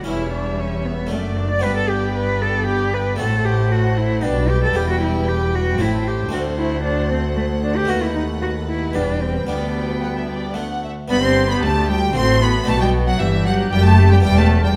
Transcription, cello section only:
0, 0, Header, 1, 2, 480
1, 0, Start_track
1, 0, Tempo, 521739
1, 64, Time_signature, 3, 2, 24, 8
1, 7264, Tempo, 534283
1, 10144, Tempo, 524017
1, 13498, End_track
2, 0, Start_track
2, 0, Title_t, "Cello section"
2, 0, Program_c, 0, 48
2, 66, Note_on_c, 0, 40, 50
2, 1009, Note_off_c, 0, 40, 0
2, 1027, Note_on_c, 0, 42, 50
2, 1505, Note_on_c, 0, 43, 57
2, 1507, Note_off_c, 0, 42, 0
2, 2944, Note_off_c, 0, 43, 0
2, 2944, Note_on_c, 0, 45, 62
2, 3902, Note_off_c, 0, 45, 0
2, 3906, Note_on_c, 0, 47, 55
2, 4384, Note_off_c, 0, 47, 0
2, 4386, Note_on_c, 0, 40, 62
2, 5325, Note_off_c, 0, 40, 0
2, 5345, Note_on_c, 0, 45, 57
2, 5825, Note_on_c, 0, 38, 62
2, 5826, Note_off_c, 0, 45, 0
2, 7237, Note_off_c, 0, 38, 0
2, 7266, Note_on_c, 0, 39, 59
2, 8198, Note_off_c, 0, 39, 0
2, 8218, Note_on_c, 0, 40, 50
2, 8697, Note_on_c, 0, 38, 52
2, 8699, Note_off_c, 0, 40, 0
2, 9938, Note_off_c, 0, 38, 0
2, 10146, Note_on_c, 0, 43, 78
2, 10595, Note_off_c, 0, 43, 0
2, 10628, Note_on_c, 0, 38, 74
2, 11101, Note_off_c, 0, 38, 0
2, 11112, Note_on_c, 0, 45, 64
2, 11583, Note_off_c, 0, 45, 0
2, 11595, Note_on_c, 0, 47, 77
2, 12064, Note_off_c, 0, 47, 0
2, 12072, Note_on_c, 0, 43, 74
2, 12541, Note_off_c, 0, 43, 0
2, 12554, Note_on_c, 0, 42, 75
2, 13020, Note_off_c, 0, 42, 0
2, 13030, Note_on_c, 0, 40, 87
2, 13496, Note_off_c, 0, 40, 0
2, 13498, End_track
0, 0, End_of_file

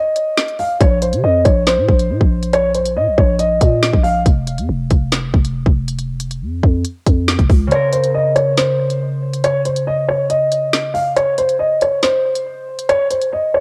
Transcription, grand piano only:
0, 0, Header, 1, 2, 480
1, 0, Start_track
1, 0, Key_signature, -5, "minor"
1, 0, Tempo, 431655
1, 895, Time_signature, 4, 2, 24, 8
1, 15127, End_track
2, 0, Start_track
2, 0, Title_t, "Grand piano"
2, 0, Program_c, 0, 0
2, 0, Note_on_c, 0, 75, 84
2, 615, Note_off_c, 0, 75, 0
2, 658, Note_on_c, 0, 77, 81
2, 842, Note_off_c, 0, 77, 0
2, 902, Note_on_c, 0, 73, 94
2, 1084, Note_off_c, 0, 73, 0
2, 1135, Note_on_c, 0, 72, 84
2, 1319, Note_off_c, 0, 72, 0
2, 1375, Note_on_c, 0, 75, 87
2, 1560, Note_off_c, 0, 75, 0
2, 1612, Note_on_c, 0, 73, 80
2, 1797, Note_off_c, 0, 73, 0
2, 1858, Note_on_c, 0, 72, 88
2, 2772, Note_off_c, 0, 72, 0
2, 2818, Note_on_c, 0, 73, 102
2, 3001, Note_off_c, 0, 73, 0
2, 3054, Note_on_c, 0, 72, 76
2, 3239, Note_off_c, 0, 72, 0
2, 3297, Note_on_c, 0, 75, 83
2, 3481, Note_off_c, 0, 75, 0
2, 3533, Note_on_c, 0, 73, 85
2, 3719, Note_off_c, 0, 73, 0
2, 3771, Note_on_c, 0, 75, 85
2, 4450, Note_off_c, 0, 75, 0
2, 4485, Note_on_c, 0, 77, 83
2, 4674, Note_off_c, 0, 77, 0
2, 8583, Note_on_c, 0, 73, 94
2, 8765, Note_off_c, 0, 73, 0
2, 8815, Note_on_c, 0, 72, 80
2, 9000, Note_off_c, 0, 72, 0
2, 9057, Note_on_c, 0, 75, 85
2, 9241, Note_off_c, 0, 75, 0
2, 9292, Note_on_c, 0, 73, 83
2, 9478, Note_off_c, 0, 73, 0
2, 9538, Note_on_c, 0, 72, 91
2, 10452, Note_off_c, 0, 72, 0
2, 10497, Note_on_c, 0, 73, 101
2, 10681, Note_off_c, 0, 73, 0
2, 10734, Note_on_c, 0, 72, 77
2, 10919, Note_off_c, 0, 72, 0
2, 10977, Note_on_c, 0, 75, 84
2, 11161, Note_off_c, 0, 75, 0
2, 11214, Note_on_c, 0, 73, 84
2, 11399, Note_off_c, 0, 73, 0
2, 11451, Note_on_c, 0, 75, 86
2, 12130, Note_off_c, 0, 75, 0
2, 12165, Note_on_c, 0, 77, 86
2, 12354, Note_off_c, 0, 77, 0
2, 12415, Note_on_c, 0, 73, 99
2, 12600, Note_off_c, 0, 73, 0
2, 12656, Note_on_c, 0, 72, 85
2, 12840, Note_off_c, 0, 72, 0
2, 12889, Note_on_c, 0, 75, 81
2, 13076, Note_off_c, 0, 75, 0
2, 13142, Note_on_c, 0, 73, 80
2, 13324, Note_off_c, 0, 73, 0
2, 13372, Note_on_c, 0, 72, 88
2, 14289, Note_off_c, 0, 72, 0
2, 14335, Note_on_c, 0, 73, 116
2, 14519, Note_off_c, 0, 73, 0
2, 14574, Note_on_c, 0, 72, 73
2, 14759, Note_off_c, 0, 72, 0
2, 14824, Note_on_c, 0, 75, 75
2, 15005, Note_off_c, 0, 75, 0
2, 15060, Note_on_c, 0, 73, 82
2, 15127, Note_off_c, 0, 73, 0
2, 15127, End_track
0, 0, End_of_file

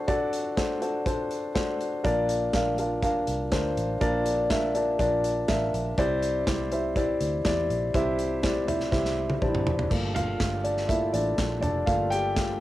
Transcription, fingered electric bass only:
0, 0, Header, 1, 2, 480
1, 0, Start_track
1, 0, Tempo, 491400
1, 79, Time_signature, 4, 2, 24, 8
1, 12309, End_track
2, 0, Start_track
2, 0, Title_t, "Fingered electric bass"
2, 0, Program_c, 0, 33
2, 1997, Note_on_c, 0, 34, 90
2, 2445, Note_off_c, 0, 34, 0
2, 2477, Note_on_c, 0, 34, 78
2, 3162, Note_off_c, 0, 34, 0
2, 3202, Note_on_c, 0, 36, 71
2, 3424, Note_off_c, 0, 36, 0
2, 3439, Note_on_c, 0, 38, 68
2, 3663, Note_off_c, 0, 38, 0
2, 3681, Note_on_c, 0, 33, 78
2, 3904, Note_off_c, 0, 33, 0
2, 3921, Note_on_c, 0, 34, 93
2, 4842, Note_off_c, 0, 34, 0
2, 4875, Note_on_c, 0, 34, 84
2, 5324, Note_off_c, 0, 34, 0
2, 5359, Note_on_c, 0, 33, 72
2, 5583, Note_off_c, 0, 33, 0
2, 5605, Note_on_c, 0, 34, 84
2, 5827, Note_off_c, 0, 34, 0
2, 5840, Note_on_c, 0, 36, 94
2, 6287, Note_off_c, 0, 36, 0
2, 6324, Note_on_c, 0, 36, 83
2, 7007, Note_off_c, 0, 36, 0
2, 7040, Note_on_c, 0, 38, 79
2, 7264, Note_off_c, 0, 38, 0
2, 7279, Note_on_c, 0, 40, 74
2, 7503, Note_off_c, 0, 40, 0
2, 7519, Note_on_c, 0, 34, 80
2, 7743, Note_off_c, 0, 34, 0
2, 7761, Note_on_c, 0, 36, 85
2, 8682, Note_off_c, 0, 36, 0
2, 8718, Note_on_c, 0, 36, 90
2, 9166, Note_off_c, 0, 36, 0
2, 9200, Note_on_c, 0, 34, 70
2, 9424, Note_off_c, 0, 34, 0
2, 9435, Note_on_c, 0, 29, 77
2, 9661, Note_off_c, 0, 29, 0
2, 9681, Note_on_c, 0, 31, 93
2, 10128, Note_off_c, 0, 31, 0
2, 10161, Note_on_c, 0, 31, 76
2, 10845, Note_off_c, 0, 31, 0
2, 10878, Note_on_c, 0, 33, 73
2, 11103, Note_off_c, 0, 33, 0
2, 11116, Note_on_c, 0, 34, 80
2, 11342, Note_off_c, 0, 34, 0
2, 11358, Note_on_c, 0, 29, 81
2, 11583, Note_off_c, 0, 29, 0
2, 11601, Note_on_c, 0, 31, 93
2, 12309, Note_off_c, 0, 31, 0
2, 12309, End_track
0, 0, End_of_file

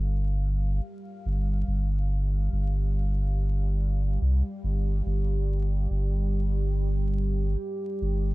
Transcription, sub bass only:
0, 0, Header, 1, 2, 480
1, 0, Start_track
1, 0, Key_signature, -2, "minor"
1, 0, Tempo, 845070
1, 715, Time_signature, 4, 2, 24, 8
1, 4741, End_track
2, 0, Start_track
2, 0, Title_t, "Sub bass"
2, 0, Program_c, 0, 38
2, 0, Note_on_c, 0, 31, 100
2, 453, Note_off_c, 0, 31, 0
2, 712, Note_on_c, 0, 31, 92
2, 928, Note_off_c, 0, 31, 0
2, 951, Note_on_c, 0, 31, 102
2, 1412, Note_off_c, 0, 31, 0
2, 1432, Note_on_c, 0, 31, 99
2, 2373, Note_off_c, 0, 31, 0
2, 2392, Note_on_c, 0, 36, 88
2, 2511, Note_off_c, 0, 36, 0
2, 2632, Note_on_c, 0, 31, 92
2, 2848, Note_off_c, 0, 31, 0
2, 2873, Note_on_c, 0, 31, 96
2, 3333, Note_off_c, 0, 31, 0
2, 3351, Note_on_c, 0, 31, 98
2, 4292, Note_off_c, 0, 31, 0
2, 4551, Note_on_c, 0, 31, 91
2, 4741, Note_off_c, 0, 31, 0
2, 4741, End_track
0, 0, End_of_file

